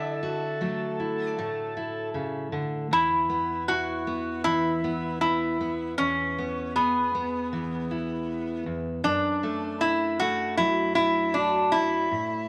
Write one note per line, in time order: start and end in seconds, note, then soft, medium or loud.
0.00 2.14 D3 medium
0.00 0.98 E4 medium
0.00 2.10 A4 medium
0.00 1.27 E5 medium
0.23 2.87 F#4 medium
0.61 2.87 F#3 medium
0.61 1.37 A3 medium
1.00 1.76 E4 soft
1.27 2.09 D5 medium
1.38 2.87 A2 medium
1.38 2.92 A3 medium
1.77 2.87 E4 medium
2.14 2.52 C#3 medium
2.52 2.91 D3 medium
2.91 5.98 E2 medium
2.91 3.71 E4 loud
3.30 4.07 B3 medium
3.68 5.94 E4 medium
3.68 4.44 F#4 medium
4.07 4.83 B3 medium
4.44 7.52 E3 medium
4.44 5.20 E4 medium
4.84 5.21 B3 medium
5.21 5.59 B3 soft
5.21 5.94 E4 medium
5.61 5.94 B3 medium
5.98 8.65 E2 medium
5.98 6.75 C#4 medium
6.38 7.14 B3 medium
6.76 8.63 B3 medium
6.76 9.01 G#4 medium
7.15 9.01 B3 medium
7.53 9.06 E3 medium
7.91 9.01 E4 medium
8.66 9.04 E2 medium
9.04 12.06 F#2 medium
9.04 9.84 D4 medium
9.43 10.21 A3 medium
9.81 10.96 D4 medium
9.81 10.21 E4 medium
10.20 12.48 A3 medium
10.20 10.57 F#4 medium
10.57 12.07 F#3 medium
10.57 10.94 E4 medium
10.95 11.73 D4 medium
10.95 11.35 E4 medium
11.34 11.74 D4 medium
11.34 12.08 F#4 medium
11.72 12.07 D4 medium
11.72 12.48 E4 medium
12.11 12.48 A2 medium